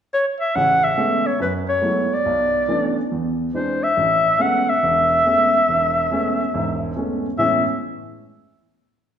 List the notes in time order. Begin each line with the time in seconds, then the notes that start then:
0.14 C#5
0.41 E5
0.55 A1 C#3 F#5
0.84 E5
0.97 G#3 A3 B3 C#4
1.27 C#5
1.40 F#2 B4
1.69 C#5
1.82 F#3 G#3 A3 B3 E4
2.14 D5
2.26 B1
2.68 E3 A3 B3 C#4 D4
3.12 E2
3.54 E3 G#3 C4 D4 C5
3.83 E5
3.97 A1
4.39 G#3 A3 B3 C#4 F#5
4.70 E5
4.83 E1
5.26 G#3 A3 B3 C#4
5.69 E1
6.11 G#3 A3 B3 C#4
6.54 E1 G#2
6.96 G#3 A3 B3 C#4
7.38 A2 E3 G#3 B3 C#4 E5